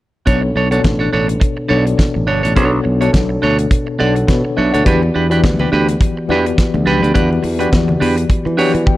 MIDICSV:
0, 0, Header, 1, 6, 480
1, 0, Start_track
1, 0, Key_signature, 2, "minor"
1, 0, Tempo, 573066
1, 228, Time_signature, 4, 2, 24, 8
1, 7514, End_track
2, 0, Start_track
2, 0, Title_t, "Clean electric guitar"
2, 0, Program_c, 0, 27
2, 216, Note_on_c, 0, 62, 55
2, 223, Note_on_c, 0, 69, 69
2, 227, Note_on_c, 0, 73, 80
2, 345, Note_off_c, 0, 62, 0
2, 345, Note_off_c, 0, 73, 0
2, 349, Note_off_c, 0, 69, 0
2, 466, Note_on_c, 0, 62, 56
2, 475, Note_on_c, 0, 69, 57
2, 477, Note_on_c, 0, 73, 51
2, 564, Note_off_c, 0, 62, 0
2, 568, Note_off_c, 0, 69, 0
2, 569, Note_off_c, 0, 73, 0
2, 596, Note_on_c, 0, 73, 53
2, 602, Note_on_c, 0, 69, 55
2, 607, Note_on_c, 0, 62, 48
2, 675, Note_off_c, 0, 73, 0
2, 678, Note_off_c, 0, 69, 0
2, 680, Note_off_c, 0, 62, 0
2, 830, Note_on_c, 0, 73, 54
2, 837, Note_on_c, 0, 69, 53
2, 845, Note_on_c, 0, 62, 44
2, 912, Note_off_c, 0, 73, 0
2, 916, Note_off_c, 0, 69, 0
2, 920, Note_off_c, 0, 62, 0
2, 943, Note_on_c, 0, 62, 68
2, 948, Note_on_c, 0, 69, 76
2, 952, Note_on_c, 0, 73, 68
2, 1064, Note_off_c, 0, 73, 0
2, 1069, Note_off_c, 0, 62, 0
2, 1072, Note_off_c, 0, 69, 0
2, 1412, Note_on_c, 0, 62, 74
2, 1416, Note_on_c, 0, 69, 84
2, 1425, Note_on_c, 0, 73, 85
2, 1544, Note_off_c, 0, 62, 0
2, 1544, Note_off_c, 0, 73, 0
2, 1546, Note_off_c, 0, 69, 0
2, 1901, Note_on_c, 0, 62, 73
2, 1904, Note_on_c, 0, 69, 66
2, 1908, Note_on_c, 0, 73, 79
2, 2026, Note_off_c, 0, 73, 0
2, 2029, Note_off_c, 0, 62, 0
2, 2031, Note_off_c, 0, 69, 0
2, 2036, Note_on_c, 0, 73, 58
2, 2039, Note_on_c, 0, 69, 51
2, 2046, Note_on_c, 0, 62, 45
2, 2117, Note_off_c, 0, 73, 0
2, 2118, Note_off_c, 0, 69, 0
2, 2121, Note_off_c, 0, 62, 0
2, 2141, Note_on_c, 0, 62, 56
2, 2148, Note_on_c, 0, 69, 72
2, 2149, Note_on_c, 0, 73, 76
2, 2267, Note_off_c, 0, 73, 0
2, 2273, Note_off_c, 0, 69, 0
2, 2323, Note_off_c, 0, 62, 0
2, 2519, Note_on_c, 0, 73, 60
2, 2523, Note_on_c, 0, 69, 56
2, 2526, Note_on_c, 0, 62, 45
2, 2598, Note_off_c, 0, 73, 0
2, 2600, Note_off_c, 0, 69, 0
2, 2601, Note_off_c, 0, 62, 0
2, 2865, Note_on_c, 0, 62, 80
2, 2872, Note_on_c, 0, 69, 84
2, 2878, Note_on_c, 0, 73, 81
2, 2992, Note_off_c, 0, 62, 0
2, 2992, Note_off_c, 0, 73, 0
2, 2995, Note_off_c, 0, 69, 0
2, 3341, Note_on_c, 0, 62, 73
2, 3346, Note_on_c, 0, 69, 85
2, 3353, Note_on_c, 0, 74, 90
2, 3469, Note_off_c, 0, 62, 0
2, 3472, Note_off_c, 0, 69, 0
2, 3475, Note_off_c, 0, 74, 0
2, 3827, Note_on_c, 0, 62, 76
2, 3833, Note_on_c, 0, 69, 66
2, 3837, Note_on_c, 0, 73, 88
2, 3953, Note_off_c, 0, 62, 0
2, 3956, Note_off_c, 0, 69, 0
2, 3958, Note_off_c, 0, 73, 0
2, 3967, Note_on_c, 0, 73, 69
2, 3974, Note_on_c, 0, 69, 61
2, 3981, Note_on_c, 0, 62, 51
2, 4043, Note_off_c, 0, 73, 0
2, 4046, Note_off_c, 0, 69, 0
2, 4049, Note_off_c, 0, 62, 0
2, 4073, Note_on_c, 0, 62, 71
2, 4076, Note_on_c, 0, 67, 87
2, 4082, Note_on_c, 0, 71, 85
2, 4196, Note_off_c, 0, 62, 0
2, 4197, Note_off_c, 0, 67, 0
2, 4198, Note_off_c, 0, 71, 0
2, 4310, Note_on_c, 0, 62, 56
2, 4316, Note_on_c, 0, 67, 59
2, 4320, Note_on_c, 0, 71, 58
2, 4407, Note_off_c, 0, 62, 0
2, 4410, Note_off_c, 0, 67, 0
2, 4412, Note_off_c, 0, 71, 0
2, 4448, Note_on_c, 0, 71, 62
2, 4453, Note_on_c, 0, 67, 55
2, 4457, Note_on_c, 0, 62, 52
2, 4523, Note_off_c, 0, 71, 0
2, 4525, Note_off_c, 0, 67, 0
2, 4527, Note_off_c, 0, 62, 0
2, 4689, Note_on_c, 0, 71, 67
2, 4696, Note_on_c, 0, 67, 53
2, 4700, Note_on_c, 0, 62, 49
2, 4763, Note_off_c, 0, 71, 0
2, 4767, Note_off_c, 0, 67, 0
2, 4769, Note_off_c, 0, 62, 0
2, 4790, Note_on_c, 0, 62, 73
2, 4797, Note_on_c, 0, 67, 81
2, 4802, Note_on_c, 0, 71, 87
2, 4914, Note_off_c, 0, 62, 0
2, 4917, Note_off_c, 0, 67, 0
2, 4920, Note_off_c, 0, 71, 0
2, 5279, Note_on_c, 0, 62, 77
2, 5288, Note_on_c, 0, 67, 89
2, 5291, Note_on_c, 0, 71, 87
2, 5398, Note_off_c, 0, 62, 0
2, 5403, Note_off_c, 0, 67, 0
2, 5404, Note_off_c, 0, 71, 0
2, 5744, Note_on_c, 0, 62, 81
2, 5752, Note_on_c, 0, 67, 84
2, 5755, Note_on_c, 0, 71, 85
2, 5870, Note_off_c, 0, 62, 0
2, 5874, Note_off_c, 0, 71, 0
2, 5875, Note_off_c, 0, 67, 0
2, 5884, Note_on_c, 0, 71, 66
2, 5889, Note_on_c, 0, 67, 62
2, 5893, Note_on_c, 0, 62, 45
2, 5960, Note_off_c, 0, 71, 0
2, 5963, Note_off_c, 0, 67, 0
2, 5965, Note_off_c, 0, 62, 0
2, 5982, Note_on_c, 0, 62, 71
2, 5985, Note_on_c, 0, 67, 76
2, 5989, Note_on_c, 0, 71, 90
2, 6109, Note_off_c, 0, 62, 0
2, 6111, Note_off_c, 0, 67, 0
2, 6111, Note_off_c, 0, 71, 0
2, 6358, Note_on_c, 0, 71, 62
2, 6364, Note_on_c, 0, 67, 58
2, 6367, Note_on_c, 0, 62, 47
2, 6437, Note_off_c, 0, 71, 0
2, 6440, Note_off_c, 0, 67, 0
2, 6442, Note_off_c, 0, 62, 0
2, 6704, Note_on_c, 0, 62, 70
2, 6711, Note_on_c, 0, 67, 74
2, 6716, Note_on_c, 0, 71, 75
2, 6829, Note_off_c, 0, 62, 0
2, 6831, Note_off_c, 0, 71, 0
2, 6833, Note_off_c, 0, 67, 0
2, 7182, Note_on_c, 0, 62, 87
2, 7188, Note_on_c, 0, 67, 87
2, 7193, Note_on_c, 0, 73, 90
2, 7307, Note_off_c, 0, 62, 0
2, 7310, Note_off_c, 0, 67, 0
2, 7313, Note_off_c, 0, 73, 0
2, 7514, End_track
3, 0, Start_track
3, 0, Title_t, "Tine electric piano"
3, 0, Program_c, 1, 4
3, 220, Note_on_c, 1, 47, 78
3, 223, Note_on_c, 1, 59, 72
3, 227, Note_on_c, 1, 62, 68
3, 229, Note_on_c, 1, 69, 70
3, 231, Note_on_c, 1, 73, 82
3, 363, Control_c, 1, 64, 127
3, 451, Note_off_c, 1, 47, 0
3, 453, Note_off_c, 1, 59, 0
3, 455, Note_off_c, 1, 62, 0
3, 456, Note_off_c, 1, 69, 0
3, 456, Note_off_c, 1, 73, 0
3, 591, Note_on_c, 1, 47, 74
3, 591, Note_on_c, 1, 59, 69
3, 598, Note_on_c, 1, 62, 77
3, 599, Note_on_c, 1, 69, 73
3, 601, Note_on_c, 1, 73, 84
3, 1117, Note_off_c, 1, 59, 0
3, 1118, Note_off_c, 1, 47, 0
3, 1121, Note_off_c, 1, 62, 0
3, 1121, Note_off_c, 1, 69, 0
3, 1122, Note_off_c, 1, 73, 0
3, 1417, Note_on_c, 1, 47, 75
3, 1420, Note_on_c, 1, 59, 71
3, 1422, Note_on_c, 1, 62, 65
3, 1426, Note_on_c, 1, 69, 71
3, 1430, Note_on_c, 1, 73, 65
3, 1486, Note_on_c, 1, 74, 80
3, 1491, Note_off_c, 1, 73, 0
3, 1878, Note_off_c, 1, 47, 0
3, 1879, Note_off_c, 1, 59, 0
3, 1880, Note_off_c, 1, 62, 0
3, 1882, Note_off_c, 1, 69, 0
3, 1912, Note_off_c, 1, 74, 0
3, 2140, Note_on_c, 1, 47, 82
3, 2144, Note_on_c, 1, 59, 71
3, 2145, Note_on_c, 1, 62, 74
3, 2150, Note_on_c, 1, 69, 75
3, 2152, Note_on_c, 1, 73, 86
3, 2373, Note_off_c, 1, 47, 0
3, 2375, Note_off_c, 1, 59, 0
3, 2375, Note_off_c, 1, 62, 0
3, 2378, Note_off_c, 1, 69, 0
3, 2379, Note_off_c, 1, 73, 0
3, 2520, Note_on_c, 1, 47, 71
3, 2521, Note_on_c, 1, 59, 69
3, 2523, Note_on_c, 1, 62, 74
3, 2529, Note_on_c, 1, 69, 70
3, 2530, Note_on_c, 1, 73, 80
3, 3043, Note_off_c, 1, 47, 0
3, 3043, Note_off_c, 1, 59, 0
3, 3044, Note_off_c, 1, 62, 0
3, 3047, Note_off_c, 1, 69, 0
3, 3048, Note_off_c, 1, 73, 0
3, 3342, Note_on_c, 1, 47, 75
3, 3348, Note_on_c, 1, 59, 71
3, 3348, Note_on_c, 1, 78, 70
3, 3349, Note_on_c, 1, 62, 70
3, 3353, Note_on_c, 1, 69, 79
3, 3355, Note_on_c, 1, 73, 83
3, 3573, Note_off_c, 1, 78, 0
3, 3578, Note_off_c, 1, 73, 0
3, 3584, Note_off_c, 1, 69, 0
3, 3587, Note_on_c, 1, 71, 72
3, 3589, Note_on_c, 1, 73, 61
3, 3594, Note_on_c, 1, 69, 51
3, 3801, Note_off_c, 1, 47, 0
3, 3804, Note_off_c, 1, 59, 0
3, 3804, Note_off_c, 1, 62, 0
3, 3818, Note_off_c, 1, 73, 0
3, 3821, Note_off_c, 1, 69, 0
3, 3825, Note_on_c, 1, 76, 60
3, 3831, Note_on_c, 1, 73, 55
3, 3956, Note_off_c, 1, 76, 0
3, 3956, Note_on_c, 1, 78, 59
3, 3959, Note_off_c, 1, 73, 0
3, 3965, Note_on_c, 1, 74, 52
3, 4036, Note_off_c, 1, 71, 0
3, 4056, Note_on_c, 1, 52, 86
3, 4057, Note_off_c, 1, 74, 0
3, 4060, Note_on_c, 1, 59, 81
3, 4062, Note_on_c, 1, 66, 78
3, 4064, Note_on_c, 1, 67, 70
3, 4067, Note_on_c, 1, 74, 99
3, 4082, Control_c, 1, 64, 0
3, 4189, Note_off_c, 1, 78, 0
3, 4233, Control_c, 1, 64, 127
3, 4291, Note_off_c, 1, 52, 0
3, 4293, Note_off_c, 1, 59, 0
3, 4294, Note_off_c, 1, 66, 0
3, 4295, Note_off_c, 1, 67, 0
3, 4297, Note_off_c, 1, 74, 0
3, 4435, Note_on_c, 1, 52, 83
3, 4439, Note_on_c, 1, 59, 75
3, 4440, Note_on_c, 1, 66, 74
3, 4445, Note_on_c, 1, 67, 73
3, 4447, Note_on_c, 1, 74, 83
3, 4960, Note_off_c, 1, 52, 0
3, 4962, Note_off_c, 1, 59, 0
3, 4963, Note_off_c, 1, 66, 0
3, 4965, Note_off_c, 1, 67, 0
3, 4966, Note_off_c, 1, 74, 0
3, 5266, Note_on_c, 1, 52, 82
3, 5269, Note_on_c, 1, 59, 80
3, 5274, Note_on_c, 1, 66, 79
3, 5278, Note_on_c, 1, 67, 75
3, 5278, Note_on_c, 1, 74, 97
3, 5722, Note_off_c, 1, 52, 0
3, 5723, Note_off_c, 1, 59, 0
3, 5726, Note_off_c, 1, 66, 0
3, 5728, Note_off_c, 1, 67, 0
3, 5728, Note_off_c, 1, 74, 0
3, 5982, Note_on_c, 1, 52, 92
3, 5985, Note_on_c, 1, 59, 77
3, 5990, Note_on_c, 1, 66, 76
3, 5993, Note_on_c, 1, 67, 80
3, 5996, Note_on_c, 1, 74, 86
3, 6213, Note_off_c, 1, 52, 0
3, 6215, Note_off_c, 1, 59, 0
3, 6217, Note_off_c, 1, 66, 0
3, 6218, Note_off_c, 1, 67, 0
3, 6220, Note_off_c, 1, 74, 0
3, 6360, Note_on_c, 1, 52, 81
3, 6363, Note_on_c, 1, 59, 78
3, 6367, Note_on_c, 1, 66, 73
3, 6370, Note_on_c, 1, 67, 78
3, 6372, Note_on_c, 1, 74, 90
3, 6881, Note_off_c, 1, 52, 0
3, 6882, Note_off_c, 1, 59, 0
3, 6884, Note_off_c, 1, 66, 0
3, 6886, Note_off_c, 1, 67, 0
3, 6887, Note_off_c, 1, 74, 0
3, 7186, Note_on_c, 1, 52, 88
3, 7187, Note_on_c, 1, 59, 69
3, 7193, Note_on_c, 1, 66, 81
3, 7195, Note_on_c, 1, 67, 70
3, 7198, Note_on_c, 1, 74, 93
3, 7428, Note_on_c, 1, 79, 74
3, 7514, Note_off_c, 1, 52, 0
3, 7514, Note_off_c, 1, 59, 0
3, 7514, Note_off_c, 1, 66, 0
3, 7514, Note_off_c, 1, 67, 0
3, 7514, Note_off_c, 1, 74, 0
3, 7514, Note_off_c, 1, 79, 0
3, 7514, End_track
4, 0, Start_track
4, 0, Title_t, "Fingered electric bass"
4, 0, Program_c, 2, 33
4, 229, Note_on_c, 2, 35, 91
4, 414, Note_off_c, 2, 35, 0
4, 466, Note_on_c, 2, 35, 86
4, 652, Note_off_c, 2, 35, 0
4, 711, Note_on_c, 2, 33, 80
4, 895, Note_off_c, 2, 33, 0
4, 952, Note_on_c, 2, 33, 73
4, 1136, Note_off_c, 2, 33, 0
4, 1429, Note_on_c, 2, 35, 73
4, 1614, Note_off_c, 2, 35, 0
4, 1811, Note_on_c, 2, 33, 90
4, 1910, Note_off_c, 2, 33, 0
4, 1910, Note_on_c, 2, 31, 83
4, 2014, Note_off_c, 2, 31, 0
4, 2051, Note_on_c, 2, 33, 81
4, 2149, Note_off_c, 2, 33, 0
4, 2149, Note_on_c, 2, 35, 99
4, 2335, Note_off_c, 2, 35, 0
4, 2393, Note_on_c, 2, 35, 81
4, 2577, Note_off_c, 2, 35, 0
4, 2631, Note_on_c, 2, 35, 90
4, 2816, Note_off_c, 2, 35, 0
4, 2875, Note_on_c, 2, 38, 87
4, 3058, Note_off_c, 2, 38, 0
4, 3359, Note_on_c, 2, 35, 76
4, 3541, Note_off_c, 2, 35, 0
4, 3591, Note_on_c, 2, 47, 89
4, 3695, Note_off_c, 2, 47, 0
4, 3837, Note_on_c, 2, 35, 75
4, 3939, Note_off_c, 2, 35, 0
4, 3972, Note_on_c, 2, 38, 83
4, 4051, Note_off_c, 2, 38, 0
4, 4075, Note_on_c, 2, 40, 108
4, 4259, Note_off_c, 2, 40, 0
4, 4319, Note_on_c, 2, 40, 80
4, 4553, Note_off_c, 2, 40, 0
4, 4553, Note_on_c, 2, 38, 79
4, 4738, Note_off_c, 2, 38, 0
4, 4796, Note_on_c, 2, 38, 86
4, 4979, Note_off_c, 2, 38, 0
4, 5269, Note_on_c, 2, 40, 79
4, 5455, Note_off_c, 2, 40, 0
4, 5647, Note_on_c, 2, 38, 88
4, 5728, Note_off_c, 2, 38, 0
4, 5752, Note_on_c, 2, 37, 80
4, 5855, Note_off_c, 2, 37, 0
4, 5881, Note_on_c, 2, 38, 88
4, 5964, Note_off_c, 2, 38, 0
4, 5996, Note_on_c, 2, 40, 107
4, 6178, Note_off_c, 2, 40, 0
4, 6233, Note_on_c, 2, 40, 85
4, 6417, Note_off_c, 2, 40, 0
4, 6474, Note_on_c, 2, 40, 86
4, 6657, Note_off_c, 2, 40, 0
4, 6715, Note_on_c, 2, 40, 91
4, 6897, Note_off_c, 2, 40, 0
4, 7086, Note_on_c, 2, 52, 86
4, 7166, Note_off_c, 2, 52, 0
4, 7324, Note_on_c, 2, 52, 89
4, 7404, Note_off_c, 2, 52, 0
4, 7514, End_track
5, 0, Start_track
5, 0, Title_t, "Muted clean electric guitar strokes"
5, 355, Note_on_c, 9, 29, 36
5, 439, Note_off_c, 9, 29, 0
5, 703, Note_on_c, 9, 29, 42
5, 787, Note_off_c, 9, 29, 0
5, 1074, Note_on_c, 9, 29, 41
5, 1158, Note_off_c, 9, 29, 0
5, 1173, Note_on_c, 9, 29, 47
5, 1257, Note_off_c, 9, 29, 0
5, 1314, Note_on_c, 9, 29, 39
5, 1397, Note_off_c, 9, 29, 0
5, 1554, Note_on_c, 9, 29, 50
5, 1638, Note_off_c, 9, 29, 0
5, 1659, Note_on_c, 9, 29, 37
5, 1742, Note_off_c, 9, 29, 0
5, 1794, Note_on_c, 9, 29, 44
5, 1878, Note_off_c, 9, 29, 0
5, 2277, Note_on_c, 9, 29, 42
5, 2361, Note_off_c, 9, 29, 0
5, 2378, Note_on_c, 9, 29, 41
5, 2462, Note_off_c, 9, 29, 0
5, 2623, Note_on_c, 9, 29, 36
5, 2707, Note_off_c, 9, 29, 0
5, 2757, Note_on_c, 9, 29, 43
5, 2841, Note_off_c, 9, 29, 0
5, 3002, Note_on_c, 9, 29, 34
5, 3086, Note_off_c, 9, 29, 0
5, 3241, Note_on_c, 9, 29, 43
5, 3325, Note_off_c, 9, 29, 0
5, 3481, Note_on_c, 9, 29, 41
5, 3565, Note_off_c, 9, 29, 0
5, 3581, Note_on_c, 9, 29, 35
5, 3665, Note_off_c, 9, 29, 0
5, 3724, Note_on_c, 9, 29, 45
5, 3808, Note_off_c, 9, 29, 0
5, 4208, Note_on_c, 9, 29, 40
5, 4292, Note_off_c, 9, 29, 0
5, 4566, Note_on_c, 9, 29, 52
5, 4649, Note_off_c, 9, 29, 0
5, 4928, Note_on_c, 9, 29, 38
5, 5012, Note_off_c, 9, 29, 0
5, 5032, Note_on_c, 9, 29, 47
5, 5116, Note_off_c, 9, 29, 0
5, 5171, Note_on_c, 9, 29, 42
5, 5255, Note_off_c, 9, 29, 0
5, 5414, Note_on_c, 9, 29, 58
5, 5498, Note_off_c, 9, 29, 0
5, 5516, Note_on_c, 9, 29, 36
5, 5599, Note_off_c, 9, 29, 0
5, 5646, Note_on_c, 9, 29, 39
5, 5730, Note_off_c, 9, 29, 0
5, 6220, Note_on_c, 9, 29, 38
5, 6304, Note_off_c, 9, 29, 0
5, 6473, Note_on_c, 9, 29, 37
5, 6557, Note_off_c, 9, 29, 0
5, 6601, Note_on_c, 9, 29, 47
5, 6685, Note_off_c, 9, 29, 0
5, 6841, Note_on_c, 9, 29, 51
5, 6925, Note_off_c, 9, 29, 0
5, 6949, Note_on_c, 9, 29, 40
5, 7032, Note_off_c, 9, 29, 0
5, 7080, Note_on_c, 9, 29, 47
5, 7164, Note_off_c, 9, 29, 0
5, 7319, Note_on_c, 9, 29, 52
5, 7403, Note_off_c, 9, 29, 0
5, 7422, Note_on_c, 9, 29, 36
5, 7506, Note_off_c, 9, 29, 0
5, 7514, End_track
6, 0, Start_track
6, 0, Title_t, "Drums"
6, 226, Note_on_c, 9, 42, 52
6, 227, Note_on_c, 9, 36, 91
6, 310, Note_off_c, 9, 42, 0
6, 311, Note_off_c, 9, 36, 0
6, 602, Note_on_c, 9, 42, 40
6, 686, Note_off_c, 9, 42, 0
6, 706, Note_on_c, 9, 42, 50
6, 708, Note_on_c, 9, 36, 89
6, 713, Note_on_c, 9, 38, 98
6, 789, Note_off_c, 9, 42, 0
6, 792, Note_off_c, 9, 36, 0
6, 797, Note_off_c, 9, 38, 0
6, 1082, Note_on_c, 9, 42, 54
6, 1166, Note_off_c, 9, 42, 0
6, 1184, Note_on_c, 9, 36, 108
6, 1191, Note_on_c, 9, 42, 70
6, 1268, Note_off_c, 9, 36, 0
6, 1275, Note_off_c, 9, 42, 0
6, 1564, Note_on_c, 9, 42, 39
6, 1648, Note_off_c, 9, 42, 0
6, 1666, Note_on_c, 9, 36, 90
6, 1668, Note_on_c, 9, 42, 53
6, 1671, Note_on_c, 9, 38, 81
6, 1750, Note_off_c, 9, 36, 0
6, 1752, Note_off_c, 9, 42, 0
6, 1755, Note_off_c, 9, 38, 0
6, 2051, Note_on_c, 9, 42, 44
6, 2135, Note_off_c, 9, 42, 0
6, 2148, Note_on_c, 9, 36, 93
6, 2150, Note_on_c, 9, 42, 57
6, 2232, Note_off_c, 9, 36, 0
6, 2234, Note_off_c, 9, 42, 0
6, 2527, Note_on_c, 9, 42, 42
6, 2610, Note_off_c, 9, 42, 0
6, 2629, Note_on_c, 9, 42, 53
6, 2630, Note_on_c, 9, 36, 90
6, 2636, Note_on_c, 9, 38, 97
6, 2713, Note_off_c, 9, 42, 0
6, 2714, Note_off_c, 9, 36, 0
6, 2720, Note_off_c, 9, 38, 0
6, 3004, Note_on_c, 9, 42, 50
6, 3088, Note_off_c, 9, 42, 0
6, 3107, Note_on_c, 9, 36, 109
6, 3115, Note_on_c, 9, 42, 78
6, 3191, Note_off_c, 9, 36, 0
6, 3198, Note_off_c, 9, 42, 0
6, 3485, Note_on_c, 9, 42, 42
6, 3569, Note_off_c, 9, 42, 0
6, 3588, Note_on_c, 9, 36, 96
6, 3590, Note_on_c, 9, 42, 53
6, 3593, Note_on_c, 9, 38, 87
6, 3672, Note_off_c, 9, 36, 0
6, 3673, Note_off_c, 9, 42, 0
6, 3676, Note_off_c, 9, 38, 0
6, 3973, Note_on_c, 9, 42, 44
6, 4056, Note_off_c, 9, 42, 0
6, 4072, Note_on_c, 9, 36, 100
6, 4072, Note_on_c, 9, 42, 56
6, 4076, Note_on_c, 9, 62, 36
6, 4076, Note_on_c, 9, 64, 69
6, 4156, Note_off_c, 9, 36, 0
6, 4156, Note_off_c, 9, 42, 0
6, 4160, Note_off_c, 9, 62, 0
6, 4160, Note_off_c, 9, 64, 0
6, 4211, Note_on_c, 9, 62, 33
6, 4295, Note_off_c, 9, 62, 0
6, 4450, Note_on_c, 9, 42, 39
6, 4534, Note_off_c, 9, 42, 0
6, 4553, Note_on_c, 9, 42, 52
6, 4554, Note_on_c, 9, 36, 98
6, 4559, Note_on_c, 9, 62, 32
6, 4559, Note_on_c, 9, 63, 72
6, 4561, Note_on_c, 9, 38, 93
6, 4637, Note_off_c, 9, 42, 0
6, 4638, Note_off_c, 9, 36, 0
6, 4643, Note_off_c, 9, 62, 0
6, 4643, Note_off_c, 9, 63, 0
6, 4644, Note_off_c, 9, 38, 0
6, 4686, Note_on_c, 9, 62, 39
6, 4686, Note_on_c, 9, 64, 85
6, 4769, Note_off_c, 9, 62, 0
6, 4769, Note_off_c, 9, 64, 0
6, 4929, Note_on_c, 9, 42, 48
6, 5013, Note_off_c, 9, 42, 0
6, 5031, Note_on_c, 9, 36, 114
6, 5041, Note_on_c, 9, 42, 77
6, 5047, Note_on_c, 9, 62, 35
6, 5115, Note_off_c, 9, 36, 0
6, 5124, Note_off_c, 9, 42, 0
6, 5131, Note_off_c, 9, 62, 0
6, 5267, Note_on_c, 9, 63, 50
6, 5351, Note_off_c, 9, 63, 0
6, 5414, Note_on_c, 9, 42, 43
6, 5497, Note_off_c, 9, 42, 0
6, 5512, Note_on_c, 9, 36, 104
6, 5514, Note_on_c, 9, 42, 59
6, 5517, Note_on_c, 9, 38, 80
6, 5596, Note_off_c, 9, 36, 0
6, 5598, Note_off_c, 9, 42, 0
6, 5601, Note_off_c, 9, 38, 0
6, 5649, Note_on_c, 9, 62, 33
6, 5649, Note_on_c, 9, 63, 77
6, 5733, Note_off_c, 9, 62, 0
6, 5733, Note_off_c, 9, 63, 0
6, 5758, Note_on_c, 9, 63, 71
6, 5842, Note_off_c, 9, 63, 0
6, 5897, Note_on_c, 9, 42, 38
6, 5981, Note_off_c, 9, 42, 0
6, 5992, Note_on_c, 9, 42, 53
6, 5993, Note_on_c, 9, 36, 99
6, 6003, Note_on_c, 9, 62, 36
6, 6003, Note_on_c, 9, 64, 74
6, 6076, Note_off_c, 9, 42, 0
6, 6077, Note_off_c, 9, 36, 0
6, 6087, Note_off_c, 9, 62, 0
6, 6087, Note_off_c, 9, 64, 0
6, 6137, Note_on_c, 9, 62, 40
6, 6221, Note_off_c, 9, 62, 0
6, 6228, Note_on_c, 9, 46, 54
6, 6312, Note_off_c, 9, 46, 0
6, 6369, Note_on_c, 9, 42, 41
6, 6453, Note_off_c, 9, 42, 0
6, 6471, Note_on_c, 9, 42, 54
6, 6472, Note_on_c, 9, 36, 98
6, 6478, Note_on_c, 9, 38, 104
6, 6482, Note_on_c, 9, 62, 33
6, 6482, Note_on_c, 9, 63, 69
6, 6554, Note_off_c, 9, 42, 0
6, 6556, Note_off_c, 9, 36, 0
6, 6562, Note_off_c, 9, 38, 0
6, 6565, Note_off_c, 9, 62, 0
6, 6565, Note_off_c, 9, 63, 0
6, 6606, Note_on_c, 9, 64, 91
6, 6690, Note_off_c, 9, 64, 0
6, 6718, Note_on_c, 9, 46, 57
6, 6802, Note_off_c, 9, 46, 0
6, 6847, Note_on_c, 9, 42, 57
6, 6931, Note_off_c, 9, 42, 0
6, 6949, Note_on_c, 9, 36, 115
6, 6957, Note_on_c, 9, 42, 75
6, 6962, Note_on_c, 9, 62, 33
6, 7033, Note_off_c, 9, 36, 0
6, 7041, Note_off_c, 9, 42, 0
6, 7046, Note_off_c, 9, 62, 0
6, 7096, Note_on_c, 9, 62, 38
6, 7180, Note_off_c, 9, 62, 0
6, 7188, Note_on_c, 9, 63, 50
6, 7192, Note_on_c, 9, 46, 52
6, 7272, Note_off_c, 9, 63, 0
6, 7276, Note_off_c, 9, 46, 0
6, 7326, Note_on_c, 9, 42, 44
6, 7410, Note_off_c, 9, 42, 0
6, 7428, Note_on_c, 9, 36, 99
6, 7430, Note_on_c, 9, 48, 42
6, 7512, Note_off_c, 9, 36, 0
6, 7514, Note_off_c, 9, 48, 0
6, 7514, End_track
0, 0, End_of_file